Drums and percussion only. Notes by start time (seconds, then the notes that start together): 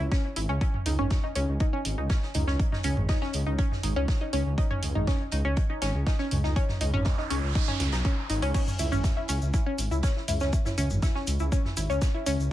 0.12 kick, snare, closed hi-hat
0.36 closed hi-hat, open hi-hat
0.61 kick, closed hi-hat
0.74 mid tom
0.86 closed hi-hat, open hi-hat
0.99 mid tom
1.10 kick, snare, closed hi-hat
1.35 closed hi-hat, open hi-hat
1.60 kick, closed hi-hat
1.85 closed hi-hat, open hi-hat
2.10 kick, snare, closed hi-hat
2.22 snare
2.34 closed hi-hat, mid tom, open hi-hat
2.47 snare
2.59 kick, closed hi-hat
2.72 snare, mid tom
2.83 closed hi-hat, open hi-hat
2.97 mid tom
3.09 kick, snare, closed hi-hat
3.22 snare
3.33 closed hi-hat, open hi-hat
3.58 kick, closed hi-hat
3.71 snare, mid tom
3.83 closed hi-hat, open hi-hat
4.08 kick, snare, closed hi-hat
4.33 closed hi-hat, open hi-hat
4.58 kick, closed hi-hat
4.71 mid tom
4.83 closed hi-hat, open hi-hat
4.95 mid tom
5.07 kick, snare, closed hi-hat
5.31 closed hi-hat, open hi-hat
5.56 kick, closed hi-hat
5.82 snare, closed hi-hat, open hi-hat
6.07 kick, snare, closed hi-hat
6.19 snare
6.31 closed hi-hat, mid tom, open hi-hat
6.43 snare
6.56 kick, closed hi-hat
6.69 snare, mid tom
6.81 closed hi-hat, open hi-hat
6.94 mid tom
7.05 kick, snare, closed hi-hat
7.18 snare
7.30 closed hi-hat, open hi-hat
7.55 kick, closed hi-hat
7.68 snare, mid tom
7.80 snare, closed hi-hat, open hi-hat
7.92 snare, closed hi-hat
8.05 kick, closed hi-hat
8.30 closed hi-hat, open hi-hat
8.42 open hi-hat
8.54 kick, closed hi-hat, crash, shaker
8.67 mid tom, shaker
8.79 closed hi-hat, open hi-hat, shaker
8.92 mid tom, shaker
9.04 kick, snare, closed hi-hat, shaker
9.28 closed hi-hat, open hi-hat, shaker
9.42 shaker
9.54 kick, closed hi-hat, shaker
9.78 closed hi-hat, open hi-hat, shaker
9.91 shaker
10.03 kick, snare, closed hi-hat, shaker
10.16 snare
10.28 closed hi-hat, mid tom, open hi-hat, shaker
10.40 snare, shaker
10.53 kick, closed hi-hat, shaker
10.65 snare, mid tom, shaker
10.78 closed hi-hat, open hi-hat, shaker
10.90 mid tom, shaker
11.02 kick, snare, closed hi-hat, shaker
11.15 snare
11.27 closed hi-hat, open hi-hat, shaker
11.39 shaker
11.52 kick, closed hi-hat, shaker
11.65 snare, mid tom
11.77 closed hi-hat, open hi-hat, shaker
11.90 shaker
12.01 kick, snare, closed hi-hat, shaker
12.26 closed hi-hat, open hi-hat, shaker
12.40 shaker